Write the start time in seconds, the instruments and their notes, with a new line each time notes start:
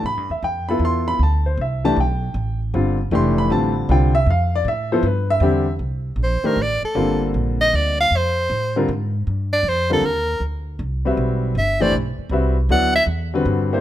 0.03 upright bass A2, grand piano B5
0.17 upright bass G2
0.29 upright bass E2, grand piano E5
0.43 upright bass F2, grand piano G5
0.69 grand piano B3 E4 F4 A4 B5
0.79 upright bass E2
0.85 grand piano C6
1.08 grand piano B5
1.19 upright bass D2, grand piano A5
1.46 grand piano C5
1.57 upright bass C2, grand piano E5
1.85 grand piano E3 A3 D4 G4 A5
1.96 upright bass B1
2.00 grand piano G5
2.34 upright bass A1
2.74 upright bass G1, grand piano D3 G3 C4 F4
3.11 upright bass F1, grand piano E3 A3 D4 G4 C6
3.38 grand piano B5
3.50 upright bass A1, grand piano D3 G3 C4 F4 A5
3.89 upright bass C2, grand piano D3 G3 C4 F4 G5
4.15 grand piano E5
4.26 upright bass F2
4.30 grand piano F5
4.55 grand piano D5
4.65 upright bass A2, grand piano E5
4.92 grand piano F3 B3 E4 A4 C5
5.03 upright bass G2, grand piano B4
5.30 grand piano E5
5.40 upright bass E2, grand piano D3 G3 C4 G4
5.79 upright bass C2
6.16 upright bass A#1
6.23 soprano saxophone C5
6.44 grand piano D#3 A3 D4 G4 C5, soprano saxophone A#4
6.56 upright bass A1
6.62 soprano saxophone D5
6.83 soprano saxophone A4, muted upright bass stroke
6.95 upright bass G1, grand piano D3 G3 A#3 C4 F4
7.34 upright bass A#1
7.61 soprano saxophone D#5
7.73 upright bass D2, soprano saxophone D5
8.00 soprano saxophone F5
8.11 upright bass F2
8.16 soprano saxophone C5
8.50 upright bass A2
8.76 grand piano D3 G3 C4 F4 A#4
8.89 upright bass G#2
9.27 upright bass G2
9.53 soprano saxophone D5
9.63 upright bass F2
9.68 soprano saxophone C5
9.90 grand piano D3 G3 C4 F4 A#4, soprano saxophone A4
10.01 upright bass D#2
10.05 soprano saxophone A#4
10.40 upright bass D2
10.79 upright bass C2
11.05 grand piano G3 C4 F#4 B4 E5
11.17 upright bass B1
11.55 upright bass G1, soprano saxophone E5
11.80 grand piano E3 A3 D4 G4 C5, soprano saxophone D5
11.92 upright bass B1
12.19 muted upright bass stroke
12.29 upright bass C2, grand piano G3 C4 F#4 B4 E5
12.69 upright bass D2, grand piano F#3 B3 E4 A4 D5, soprano saxophone F#5
12.95 soprano saxophone E5
13.06 upright bass E2
13.34 grand piano D3 G3 C4 F#4 B4
13.45 upright bass G2
13.73 grand piano A#3 D4 E4 G4 C5